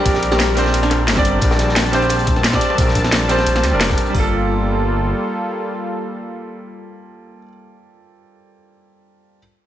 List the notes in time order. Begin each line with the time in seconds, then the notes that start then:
Already playing: G3 C4 D4 G4 A#4 C5 D5
0.02 A#1 G3 C4, kick, closed hi-hat, ride
0.07 D4 A#4
0.14 snare
0.22 closed hi-hat, ride
0.32 G4, snare, high bongo
0.39 snare, closed hi-hat, ride
0.55 G3 C4 D4 C5, snare, closed hi-hat, open hi-hat, ride, high bongo
0.66 snare
0.74 A#1, closed hi-hat, ride
0.83 D4, snare
0.91 A#1, snare, closed hi-hat, ride, high bongo
1.08 G1, snare, closed hi-hat, open hi-hat, ride
1.15 G3 C4 D4 D5, kick, snare, closed hi-hat, high bongo
1.25 closed hi-hat, ride
1.39 A#1 G3 C4 A5, kick, closed hi-hat, ride
1.43 D4 A#4
1.51 snare, high bongo
1.59 snare, closed hi-hat, ride
1.69 snare
1.76 snare, closed hi-hat, ride, high bongo
1.86 closed hi-hat
1.91 G3 C4 D4 C5, closed hi-hat, ride
2.02 snare, closed hi-hat
2.09 closed hi-hat, ride, high bongo
2.19 closed hi-hat
2.27 kick, closed hi-hat, ride
2.36 snare, high bongo
2.44 snare, closed hi-hat, ride
2.52 G3 C4 D4 D5, kick, snare
2.61 snare, closed hi-hat, ride
2.70 high bongo
2.75 A#1 G3 C4, kick, closed hi-hat, ride
2.79 D4 A#4
2.88 snare
2.95 kick, closed hi-hat, ride, high bongo
3.04 snare
3.12 snare, closed hi-hat, ride
3.28 G3 C4 D4 C5, snare, closed hi-hat, open hi-hat, ride, high bongo
3.39 snare
3.46 A#1, closed hi-hat, ride
3.55 snare, high bongo
3.63 D2, snare, closed hi-hat, ride
3.71 F1 G3 C4 D4 A#4
3.81 snare, closed hi-hat, ride
3.89 kick, snare, high bongo
3.98 closed hi-hat, ride
4.06 G3, closed hi-hat
4.13 G1 G3 A#3 F4 A4, kick, open hi-hat
4.20 A4